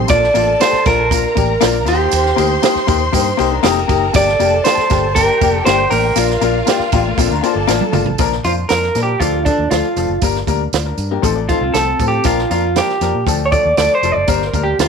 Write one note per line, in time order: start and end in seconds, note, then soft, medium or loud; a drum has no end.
0.08 0.28 A#1 loud
0.08 0.22 A#3 medium
0.08 0.22 D4 medium
0.08 0.23 F4 loud
0.08 1.09 A4 medium
0.08 0.57 D5 loud
0.08 1.09 A5 medium
0.08 kick loud
0.08 hi-hat pedal medium
0.08 ride medium
0.08 tambourine loud
0.24 snare soft
0.34 0.54 A1 loud
0.34 0.47 A#3 loud
0.34 0.48 D4 medium
0.34 0.48 F4 loud
0.34 ride medium
0.34 tambourine medium
0.60 0.73 A#3 medium
0.60 0.74 D4 medium
0.60 0.74 G4 medium
0.60 0.86 C5 loud
0.60 snare loud
0.60 ride medium
0.60 tambourine medium
0.73 muted fingered electric bass stroke soft
0.73 snare soft
0.85 1.23 A#1 medium
0.85 0.99 A#3 medium
0.85 0.99 D4 medium
0.85 0.99 F4 medium
0.85 1.90 A#4 loud
0.85 kick loud
0.85 snare soft
0.85 ride medium
0.85 tambourine medium
1.11 1.24 A#3 medium
1.11 1.24 D4 medium
1.11 1.25 F4 medium
1.11 1.85 A#4 medium
1.11 1.85 A#5 medium
1.11 kick medium
1.11 ride medium
1.11 tambourine loud
1.35 1.55 A1 loud
1.35 1.49 A#3 medium
1.35 1.49 D4 medium
1.35 1.50 G4 medium
1.35 kick medium
1.35 ride medium
1.35 tambourine medium
1.61 1.87 A#1 medium
1.61 1.74 A#3 loud
1.61 1.74 D4 loud
1.61 1.75 F4 loud
1.61 snare loud
1.61 ride medium
1.61 tambourine medium
1.85 2.06 D#2 medium
1.85 2.27 A#3 medium
1.85 2.27 D#4 medium
1.85 1.93 F4 medium
1.85 2.85 G4 medium
1.85 3.61 C5 medium
1.85 3.61 C6 loud
1.85 ride medium
1.85 tambourine soft
1.93 2.31 G4 medium
2.11 2.31 D#2 loud
2.11 ride medium
2.11 tambourine loud
2.26 snare soft
2.36 2.56 D2 loud
2.36 2.50 A#3 loud
2.36 2.50 D#4 medium
2.36 2.51 G4 loud
2.36 ride medium
2.36 tambourine medium
2.62 2.76 A#3 medium
2.62 2.76 D#4 medium
2.62 2.76 G4 loud
2.62 snare loud
2.62 ride medium
2.62 tambourine medium
2.75 muted fingered electric bass stroke medium
2.75 snare soft
2.87 3.07 D#2 loud
2.87 3.00 A#3 medium
2.87 3.01 D#4 medium
2.87 3.01 G4 loud
2.87 kick loud
2.87 ride medium
2.87 tambourine medium
3.12 3.32 G2 loud
3.12 3.26 A#3 medium
3.12 3.26 D#4 medium
3.12 3.27 G4 loud
3.12 kick medium
3.12 ride medium
3.12 tambourine loud
3.37 3.58 C2 loud
3.37 3.51 A#3 loud
3.37 3.51 D#4 medium
3.37 3.52 G4 loud
3.37 3.51 C5 medium
3.37 ride medium
3.37 tambourine medium
3.51 3.63 D4 medium
3.51 3.63 A#4 medium
3.63 3.83 F1 loud
3.63 3.76 A#3 loud
3.63 3.77 C4 medium
3.63 3.77 D#4 loud
3.63 3.77 G4 loud
3.63 3.76 A4 medium
3.63 4.14 A#4 medium
3.63 4.14 A#5 medium
3.63 snare loud
3.63 ride medium
3.63 tambourine medium
3.78 4.14 A#3 medium
3.78 4.14 G4 medium
3.88 4.08 F#1 medium
3.88 4.02 A#3 medium
3.88 4.02 D#4 medium
3.88 4.03 G4 loud
3.88 kick medium
3.88 ride medium
3.88 tambourine medium
4.13 4.34 G1 loud
4.13 4.27 A#3 medium
4.13 4.28 D4 medium
4.13 4.28 G4 loud
4.13 5.14 A4 medium
4.13 4.64 D5 loud
4.13 5.14 A5 medium
4.13 kick loud
4.13 ride medium
4.13 tambourine loud
4.29 snare soft
4.39 4.59 F1 loud
4.39 4.53 A#3 loud
4.39 4.53 D4 medium
4.39 4.53 G4 loud
4.39 ride medium
4.39 tambourine medium
4.64 4.78 A#3 medium
4.64 4.78 D4 medium
4.64 4.79 G4 medium
4.64 5.15 C5 loud
4.64 snare loud
4.64 ride medium
4.64 tambourine medium
4.77 muted fingered electric bass stroke soft
4.77 snare soft
4.90 5.28 G1 medium
4.90 5.03 A#3 medium
4.90 5.04 D4 medium
4.90 5.04 G4 medium
4.90 kick loud
4.90 snare soft
4.90 ride medium
4.90 tambourine medium
5.15 5.29 A#3 medium
5.15 5.29 D4 medium
5.15 6.15 G4 medium
5.15 5.65 A#4 loud
5.15 5.30 A#4 medium
5.15 6.15 G5 medium
5.15 kick medium
5.15 ride medium
5.15 tambourine medium
5.41 5.60 F1 medium
5.41 5.54 A#3 medium
5.41 5.54 D4 medium
5.41 5.55 G4 medium
5.41 kick medium
5.41 ride medium
5.41 tambourine medium
5.65 5.85 G1 medium
5.65 5.79 A#3 loud
5.65 5.80 D4 loud
5.65 5.80 G4 loud
5.65 5.90 C5 loud
5.65 snare loud
5.65 ride medium
5.65 tambourine medium
5.91 6.10 A1 medium
5.91 6.04 A#3 medium
5.91 6.05 D4 medium
5.91 7.64 A#4 medium
5.91 6.05 A#4 medium
5.91 open hi-hat medium
5.91 ride medium
5.91 tambourine medium
6.16 6.35 A#1 loud
6.16 6.29 A#3 loud
6.16 6.30 D4 loud
6.16 7.41 F4 medium
6.16 6.30 F4 loud
6.16 7.41 F5 medium
6.16 hi-hat pedal medium
6.16 ride medium
6.16 tambourine loud
6.30 snare soft
6.41 6.60 A#1 loud
6.41 6.55 A#3 loud
6.41 6.55 D4 medium
6.41 6.56 F4 loud
6.41 ride medium
6.41 tambourine medium
6.66 6.80 A#3 medium
6.66 6.81 D4 medium
6.66 6.81 G4 loud
6.66 snare loud
6.66 ride medium
6.66 tambourine medium
6.80 muted fingered electric bass stroke soft
6.80 snare soft
6.92 7.12 A1 medium
6.92 7.06 A#3 medium
6.92 7.05 A#3 medium
6.92 7.06 D4 medium
6.92 7.07 F4 loud
6.92 7.05 G4 medium
6.92 kick loud
6.92 ride medium
6.92 tambourine medium
7.06 7.18 A3 medium
7.06 7.18 F4 medium
7.18 7.27 A#1 loud
7.18 7.31 A#3 medium
7.18 7.31 C4 medium
7.18 7.32 D4 medium
7.18 7.32 F4 loud
7.18 7.30 A4 medium
7.18 kick medium
7.18 ride medium
7.18 tambourine medium
7.30 7.40 D2 medium
7.30 7.44 D4 medium
7.30 7.43 A#4 medium
7.42 7.56 A#3 medium
7.42 7.57 D4 medium
7.42 7.57 F4 loud
7.42 8.17 A4 medium
7.42 7.56 C5 medium
7.42 8.17 A5 medium
7.42 ride medium
7.42 tambourine medium
7.55 7.65 G1 medium
7.55 8.17 F4 medium
7.55 8.16 D5 medium
7.67 7.78 A1 medium
7.67 7.81 A#3 loud
7.67 7.82 D4 loud
7.67 7.82 F4 loud
7.67 snare medium
7.67 tambourine loud
7.81 high tom medium
7.92 8.03 G1 medium
7.92 8.06 A#3 medium
7.92 8.07 D4 medium
7.92 8.07 F4 loud
7.92 mid tom loud
7.92 tambourine medium
8.06 8.16 A1 medium
8.06 floor tom loud
8.18 8.38 A#1 medium
8.18 8.32 F3 loud
8.18 8.32 A#3 loud
8.18 8.33 D4 loud
8.18 8.33 A#4 loud
8.18 kick loud
8.18 closed hi-hat medium
8.18 tambourine medium
8.32 snare soft
8.44 8.63 F2 medium
8.44 8.58 F3 medium
8.44 8.58 A#3 medium
8.44 8.58 D4 medium
8.44 8.52 F4 medium
8.44 8.59 C5 medium
8.44 closed hi-hat medium
8.44 tambourine medium
8.69 8.89 F2 medium
8.69 8.83 F3 medium
8.69 8.83 A#3 medium
8.69 8.84 D4 medium
8.69 9.02 A#4 loud
8.69 8.84 A#4 medium
8.69 snare loud
8.69 closed hi-hat medium
8.69 tambourine medium
8.83 snare soft
8.95 9.14 A#2 medium
8.95 9.08 F3 medium
8.95 9.09 A#3 medium
8.95 9.09 D4 medium
8.95 9.09 A#4 medium
8.95 snare soft
8.95 closed hi-hat medium
8.95 tambourine medium
9.03 9.19 G4 medium
9.20 9.49 D2 loud
9.20 9.33 F3 medium
9.20 9.34 A3 medium
9.20 9.34 D4 medium
9.20 9.45 F4 medium
9.20 9.34 A4 loud
9.20 kick medium
9.20 closed hi-hat medium
9.20 tambourine medium
9.45 9.59 F3 medium
9.45 9.59 A3 medium
9.45 9.70 D4 medium
9.45 9.59 D4 medium
9.45 9.60 A4 medium
9.45 kick medium
9.45 closed hi-hat medium
9.45 tambourine medium
9.58 9.68 D#2 medium
9.71 9.81 D2 medium
9.71 9.85 F3 medium
9.71 9.85 A3 medium
9.71 9.85 D4 medium
9.71 10.18 F4 medium
9.71 9.85 A4 medium
9.71 snare loud
9.71 closed hi-hat medium
9.71 tambourine medium
9.96 10.06 F1 medium
9.96 10.10 F3 medium
9.96 10.10 A3 medium
9.96 10.10 D4 medium
9.96 10.11 A4 medium
9.96 closed hi-hat medium
9.96 tambourine soft
10.09 10.19 F#1 medium
10.22 10.41 G1 loud
10.22 10.35 G3 loud
10.22 10.36 A#3 medium
10.22 10.36 D4 medium
10.22 10.36 A#4 loud
10.22 kick loud
10.22 closed hi-hat medium
10.22 tambourine medium
10.36 snare soft
10.47 10.66 D2 medium
10.47 10.60 G3 medium
10.47 10.61 A#3 medium
10.47 10.61 D4 medium
10.47 10.61 A#4 medium
10.47 kick medium
10.47 closed hi-hat medium
10.47 tambourine medium
10.73 10.92 D2 medium
10.73 10.86 F4 medium
10.73 10.85 D5 medium
10.73 snare loud
10.73 closed hi-hat loud
10.73 tambourine medium
10.86 11.10 D4 medium
10.86 11.10 A#4 medium
10.98 11.17 G2 loud
10.98 closed hi-hat medium
10.98 tambourine medium
11.11 11.36 A#3 medium
11.11 11.23 D4 soft
11.11 11.35 G4 medium
11.11 11.23 A#4 medium
11.22 11.52 A1 loud
11.22 11.36 F3 loud
11.22 11.36 A3 medium
11.22 11.37 C4 loud
11.22 11.36 D#4 medium
11.22 11.37 A4 loud
11.22 11.35 C5 medium
11.22 kick medium
11.22 closed hi-hat medium
11.22 tambourine medium
11.36 11.49 F4 medium
11.36 11.48 D5 medium
11.49 11.62 F3 medium
11.49 11.62 A3 medium
11.49 11.63 C4 medium
11.49 11.62 D#4 medium
11.49 11.72 F4 medium
11.49 11.63 A4 medium
11.49 11.61 C5 medium
11.49 kick medium
11.49 closed hi-hat medium
11.49 tambourine medium
11.61 11.71 C2 loud
11.61 12.22 C4 medium
11.61 12.22 A4 medium
11.74 11.93 C2 medium
11.74 11.87 F3 medium
11.74 11.87 A3 medium
11.74 11.88 C4 medium
11.74 12.08 A4 loud
11.74 11.88 A4 medium
11.74 snare medium
11.74 closed hi-hat medium
11.74 tambourine medium
11.99 12.18 A2 loud
11.99 12.13 F3 medium
11.99 12.13 A3 medium
11.99 12.14 C4 medium
11.99 12.14 A4 medium
11.99 kick medium
11.99 closed hi-hat medium
11.99 tambourine soft
12.08 12.26 G4 medium
12.24 12.44 A#1 loud
12.24 12.38 F3 loud
12.24 12.38 A#3 medium
12.24 12.39 D4 medium
12.24 12.49 F4 medium
12.24 12.39 A#4 loud
12.24 kick loud
12.24 closed hi-hat loud
12.24 tambourine medium
12.39 snare soft
12.50 12.79 F2 loud
12.50 12.63 F3 medium
12.50 12.63 A#3 medium
12.50 12.64 D4 medium
12.50 12.77 F4 medium
12.50 12.64 A#4 medium
12.50 closed hi-hat medium
12.50 tambourine medium
12.75 12.89 F3 medium
12.75 12.89 A#3 medium
12.75 12.89 D4 medium
12.75 13.24 G4 medium
12.75 12.90 A#4 medium
12.75 snare loud
12.75 closed hi-hat medium
12.75 tambourine medium
12.89 snare soft
13.01 13.11 F2 medium
13.01 13.14 F3 medium
13.01 13.14 A#3 medium
13.01 13.15 D4 medium
13.01 13.15 A#4 medium
13.01 snare soft
13.01 closed hi-hat medium
13.01 tambourine medium
13.14 13.23 A#2 medium
13.27 13.55 D2 loud
13.27 13.40 F3 medium
13.27 13.40 A3 medium
13.27 13.40 D4 medium
13.27 13.40 A4 loud
13.27 kick medium
13.27 closed hi-hat medium
13.27 tambourine medium
13.46 13.51 C#5 medium
13.52 13.65 F3 medium
13.52 13.65 A3 medium
13.52 13.65 D4 medium
13.52 13.66 A4 medium
13.52 13.76 D5 loud
13.52 kick medium
13.52 closed hi-hat medium
13.52 tambourine medium
13.65 13.75 D#2 medium
13.77 13.87 D2 medium
13.77 13.90 F3 medium
13.77 13.91 A3 medium
13.77 13.91 D4 medium
13.77 13.91 A4 medium
13.77 13.93 D5 loud
13.77 snare loud
13.77 closed hi-hat medium
13.77 tambourine medium
13.95 14.12 C5 loud
14.03 14.12 F1 medium
14.03 14.16 F3 medium
14.03 14.17 A3 medium
14.03 14.17 D4 medium
14.03 14.17 A4 medium
14.03 closed hi-hat medium
14.03 tambourine medium
14.12 14.25 F#1 medium
14.12 14.29 D5 medium
14.27 14.47 G1 medium
14.27 14.41 G3 medium
14.27 14.41 A#3 medium
14.27 14.41 D4 medium
14.27 14.42 A#4 loud
14.27 14.47 C5 loud
14.27 kick loud
14.27 closed hi-hat medium
14.27 tambourine medium
14.42 snare soft
14.47 14.63 A#4 medium
14.53 14.72 D2 loud
14.53 14.67 G3 medium
14.53 14.67 A#3 medium
14.53 14.67 D4 medium
14.53 14.67 A#4 medium
14.53 kick medium
14.53 closed hi-hat medium
14.53 tambourine medium
14.63 14.80 G4 medium
14.79 14.88 D2 medium
14.79 14.88 G3 medium
14.79 14.88 A#3 medium
14.79 14.88 D4 medium
14.79 14.88 F4 medium
14.79 14.88 A#4 medium
14.79 snare loud
14.79 closed hi-hat loud
14.79 tambourine medium